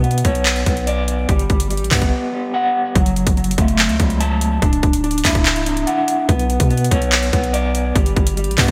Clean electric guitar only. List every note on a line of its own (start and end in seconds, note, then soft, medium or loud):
0.04 0.65 B3 medium
0.24 1.28 C#5 medium
0.66 1.29 B3 medium
0.87 1.29 D5 loud
1.29 1.69 G3 medium
1.71 2.31 G3 medium
1.91 2.95 B3 medium
2.33 2.95 G3 medium
2.54 2.96 F#5 loud
2.95 3.36 F#3 medium
3.37 3.99 F#3 medium
3.58 4.62 A3 loud
4.00 4.62 F#3 medium
4.21 4.62 A5 loud
4.62 5.03 D4 medium
5.04 5.65 D4 medium
5.24 6.29 E4 medium
5.66 6.29 D4 medium
5.87 6.29 F#5 loud
6.29 6.69 B3 medium
6.71 7.32 B3 medium
6.91 7.95 C#5 medium
7.33 7.95 B3 medium
7.53 7.95 D5 loud
7.96 8.36 G3 medium
8.37 8.71 G3 medium
8.58 8.71 B3 medium